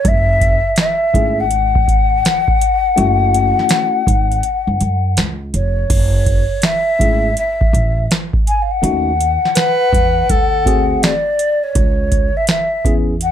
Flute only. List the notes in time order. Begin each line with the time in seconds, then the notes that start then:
0.08 E5
0.80 E5
1.40 F#5
5.55 C#5
6.64 E5
7.38 E5
8.48 G#5
8.62 F5
8.71 F#5
11.03 D5
11.63 C#5
12.37 E5
12.49 E5
13.23 F#5